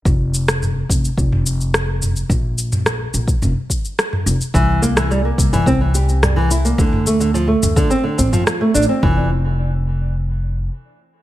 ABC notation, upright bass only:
X:1
M:4/4
L:1/8
Q:1/4=107
K:Dm
V:1 name="Upright bass" clef=bass
F,,,3 F,,, F,,,4 | B,,,3 B,,, F,,, z2 F,,, | C,,3 C,, C,,4 | D,,3 D,, z A,,, z A,,, |
F,,,6 z2 |]